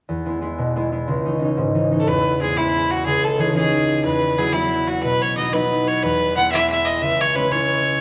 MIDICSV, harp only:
0, 0, Header, 1, 2, 480
1, 0, Start_track
1, 0, Key_signature, 4, "major"
1, 0, Tempo, 330033
1, 134, Time_signature, 6, 3, 24, 8
1, 11647, End_track
2, 0, Start_track
2, 0, Title_t, "Harp"
2, 0, Program_c, 0, 46
2, 127, Note_on_c, 0, 40, 53
2, 367, Note_on_c, 0, 56, 39
2, 378, Note_on_c, 0, 59, 38
2, 380, Note_on_c, 0, 64, 38
2, 581, Note_off_c, 0, 56, 0
2, 598, Note_on_c, 0, 56, 43
2, 599, Note_off_c, 0, 59, 0
2, 605, Note_on_c, 0, 59, 39
2, 610, Note_off_c, 0, 64, 0
2, 616, Note_on_c, 0, 64, 51
2, 850, Note_on_c, 0, 47, 66
2, 1083, Note_off_c, 0, 56, 0
2, 1099, Note_on_c, 0, 56, 45
2, 1101, Note_off_c, 0, 59, 0
2, 1105, Note_off_c, 0, 64, 0
2, 1107, Note_on_c, 0, 59, 41
2, 1111, Note_on_c, 0, 64, 48
2, 1317, Note_off_c, 0, 56, 0
2, 1330, Note_on_c, 0, 56, 44
2, 1331, Note_off_c, 0, 59, 0
2, 1337, Note_on_c, 0, 59, 35
2, 1338, Note_off_c, 0, 64, 0
2, 1344, Note_on_c, 0, 64, 45
2, 1563, Note_on_c, 0, 37, 57
2, 1646, Note_off_c, 0, 40, 0
2, 1646, Note_off_c, 0, 47, 0
2, 1646, Note_off_c, 0, 56, 0
2, 1823, Note_on_c, 0, 52, 39
2, 1827, Note_on_c, 0, 61, 40
2, 1838, Note_on_c, 0, 63, 44
2, 1925, Note_off_c, 0, 64, 0
2, 2019, Note_off_c, 0, 52, 0
2, 2025, Note_on_c, 0, 52, 52
2, 2054, Note_off_c, 0, 61, 0
2, 2060, Note_on_c, 0, 61, 44
2, 2097, Note_off_c, 0, 63, 0
2, 2103, Note_on_c, 0, 63, 49
2, 2283, Note_on_c, 0, 44, 64
2, 2516, Note_off_c, 0, 52, 0
2, 2534, Note_off_c, 0, 61, 0
2, 2534, Note_on_c, 0, 52, 42
2, 2540, Note_on_c, 0, 61, 42
2, 2545, Note_off_c, 0, 63, 0
2, 2551, Note_on_c, 0, 63, 41
2, 2758, Note_off_c, 0, 52, 0
2, 2773, Note_off_c, 0, 61, 0
2, 2776, Note_on_c, 0, 52, 39
2, 2778, Note_on_c, 0, 61, 38
2, 2786, Note_off_c, 0, 63, 0
2, 2792, Note_on_c, 0, 63, 46
2, 3006, Note_on_c, 0, 40, 53
2, 3084, Note_off_c, 0, 37, 0
2, 3084, Note_off_c, 0, 44, 0
2, 3084, Note_off_c, 0, 52, 0
2, 3093, Note_off_c, 0, 63, 0
2, 3479, Note_on_c, 0, 56, 46
2, 3486, Note_off_c, 0, 59, 0
2, 3492, Note_on_c, 0, 59, 49
2, 3500, Note_on_c, 0, 64, 56
2, 3711, Note_off_c, 0, 56, 0
2, 3725, Note_off_c, 0, 59, 0
2, 3728, Note_on_c, 0, 56, 52
2, 3731, Note_on_c, 0, 59, 46
2, 3739, Note_off_c, 0, 64, 0
2, 3745, Note_on_c, 0, 64, 52
2, 4455, Note_on_c, 0, 37, 53
2, 4522, Note_off_c, 0, 40, 0
2, 4522, Note_off_c, 0, 56, 0
2, 4921, Note_on_c, 0, 52, 51
2, 4937, Note_off_c, 0, 61, 0
2, 4943, Note_on_c, 0, 61, 48
2, 4961, Note_on_c, 0, 63, 53
2, 5048, Note_off_c, 0, 64, 0
2, 5149, Note_off_c, 0, 52, 0
2, 5162, Note_on_c, 0, 52, 48
2, 5166, Note_off_c, 0, 61, 0
2, 5170, Note_off_c, 0, 63, 0
2, 5172, Note_on_c, 0, 61, 45
2, 5176, Note_on_c, 0, 63, 59
2, 5874, Note_on_c, 0, 40, 53
2, 5961, Note_off_c, 0, 37, 0
2, 5961, Note_off_c, 0, 52, 0
2, 5961, Note_off_c, 0, 63, 0
2, 6365, Note_off_c, 0, 59, 0
2, 6370, Note_on_c, 0, 54, 52
2, 6371, Note_on_c, 0, 59, 43
2, 6383, Note_on_c, 0, 64, 57
2, 6562, Note_off_c, 0, 54, 0
2, 6580, Note_on_c, 0, 54, 47
2, 6587, Note_off_c, 0, 59, 0
2, 6593, Note_on_c, 0, 59, 47
2, 6595, Note_off_c, 0, 64, 0
2, 6601, Note_on_c, 0, 64, 57
2, 7334, Note_on_c, 0, 47, 52
2, 7401, Note_off_c, 0, 40, 0
2, 7401, Note_off_c, 0, 54, 0
2, 7816, Note_on_c, 0, 54, 52
2, 7820, Note_off_c, 0, 59, 0
2, 7826, Note_on_c, 0, 59, 44
2, 7831, Note_on_c, 0, 63, 58
2, 7919, Note_off_c, 0, 64, 0
2, 8031, Note_off_c, 0, 54, 0
2, 8049, Note_off_c, 0, 59, 0
2, 8049, Note_on_c, 0, 54, 52
2, 8055, Note_on_c, 0, 59, 50
2, 8058, Note_off_c, 0, 63, 0
2, 8063, Note_on_c, 0, 63, 55
2, 8774, Note_on_c, 0, 40, 55
2, 8841, Note_off_c, 0, 47, 0
2, 8841, Note_off_c, 0, 54, 0
2, 8861, Note_off_c, 0, 63, 0
2, 9261, Note_on_c, 0, 56, 50
2, 9267, Note_off_c, 0, 59, 0
2, 9273, Note_on_c, 0, 59, 45
2, 9273, Note_on_c, 0, 64, 54
2, 9386, Note_off_c, 0, 61, 0
2, 9474, Note_off_c, 0, 56, 0
2, 9492, Note_on_c, 0, 56, 50
2, 9494, Note_off_c, 0, 59, 0
2, 9500, Note_on_c, 0, 59, 44
2, 9504, Note_off_c, 0, 64, 0
2, 9510, Note_on_c, 0, 64, 47
2, 10202, Note_on_c, 0, 37, 52
2, 10283, Note_off_c, 0, 40, 0
2, 10283, Note_off_c, 0, 56, 0
2, 10691, Note_on_c, 0, 56, 49
2, 10703, Note_on_c, 0, 61, 49
2, 10705, Note_off_c, 0, 64, 0
2, 10711, Note_on_c, 0, 64, 52
2, 10907, Note_off_c, 0, 56, 0
2, 10920, Note_on_c, 0, 56, 52
2, 10926, Note_off_c, 0, 64, 0
2, 10928, Note_off_c, 0, 61, 0
2, 10932, Note_on_c, 0, 64, 54
2, 10934, Note_on_c, 0, 61, 47
2, 11647, Note_off_c, 0, 37, 0
2, 11647, Note_off_c, 0, 56, 0
2, 11647, Note_off_c, 0, 59, 0
2, 11647, Note_off_c, 0, 61, 0
2, 11647, Note_off_c, 0, 64, 0
2, 11647, End_track
0, 0, End_of_file